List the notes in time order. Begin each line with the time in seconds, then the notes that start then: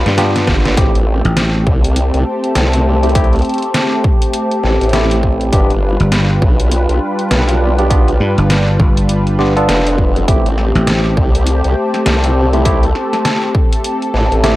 Already playing: G3 D4 F4 B4 G5
0.06 G2, snare, closed hi-hat
0.18 B3 D4 F4 G4, snare, closed hi-hat
0.36 snare, closed hi-hat
0.47 G1, kick, snare
0.65 snare, closed hi-hat
0.77 A1 A3 C4 E4 G4, kick, closed hi-hat
0.95 A1, closed hi-hat
1.00 A5
1.19 C5
1.25 A1, closed hi-hat
1.37 snare, closed hi-hat
1.67 C2, kick
1.84 closed hi-hat
1.96 closed hi-hat
2.14 C2, closed hi-hat
2.44 closed hi-hat
2.55 C2, snare, closed hi-hat
2.73 closed hi-hat
3.03 A3 C4 E4 G4, closed hi-hat
3.09 closed hi-hat
3.15 A3 C4 E4 G4, kick, closed hi-hat
3.24 closed hi-hat
3.33 closed hi-hat
3.36 closed hi-hat
3.39 closed hi-hat
3.42 closed hi-hat
3.45 closed hi-hat
3.49 closed hi-hat
3.54 closed hi-hat
3.58 closed hi-hat
3.62 closed hi-hat
3.74 snare, closed hi-hat
4.04 kick
4.22 closed hi-hat
4.33 closed hi-hat
4.51 closed hi-hat
4.63 A1, snare
4.81 A1, closed hi-hat
4.83 closed hi-hat
4.89 snare, closed hi-hat
4.93 A3 C4 E4 G4, closed hi-hat
5.03 closed hi-hat
5.11 closed hi-hat
5.23 kick
5.41 closed hi-hat
5.52 G1 G3 B3 D4 F4 G4 B4, kick, closed hi-hat
5.65 G5
5.70 G1, closed hi-hat
5.77 B4
6.00 G1, closed hi-hat
6.12 snare, closed hi-hat
6.42 B1, kick
6.60 closed hi-hat
6.71 closed hi-hat
6.89 B1, closed hi-hat
7.19 closed hi-hat
7.31 B1, snare, closed hi-hat
7.49 closed hi-hat
7.79 B3 D4 F4 G4, closed hi-hat
7.90 B3 D4 F4 G4, kick, closed hi-hat
8.08 closed hi-hat
8.20 G2
8.38 G1, closed hi-hat
8.50 snare, closed hi-hat
8.80 G1, kick
8.97 closed hi-hat
9.09 closed hi-hat
9.27 closed hi-hat
9.39 B3 D4 F4 G4, snare
9.56 B3 D4 F4 A4, closed hi-hat
9.69 F1, snare, closed hi-hat
9.87 closed hi-hat
9.98 kick
10.16 closed hi-hat
10.27 A1 A3 C4 E4 G4, kick, closed hi-hat
10.46 A1, closed hi-hat
10.58 C5, snare
10.75 A1, snare, closed hi-hat
10.87 snare, closed hi-hat
11.00 A5
11.17 C2, kick
11.35 closed hi-hat
11.47 closed hi-hat
11.64 C2, closed hi-hat
11.94 snare, closed hi-hat
12.06 C2, snare, closed hi-hat
12.24 closed hi-hat
12.53 A3 C4 E4 G4, closed hi-hat
12.65 A3 C4 E4 G4 A4, kick, closed hi-hat
12.83 closed hi-hat
12.95 snare
13.13 snare, closed hi-hat
13.25 snare, closed hi-hat
13.55 kick
13.73 closed hi-hat
13.84 closed hi-hat
14.02 closed hi-hat
14.14 A1, snare
14.32 A1, closed hi-hat
14.44 A3 C4 E4 G4, snare, closed hi-hat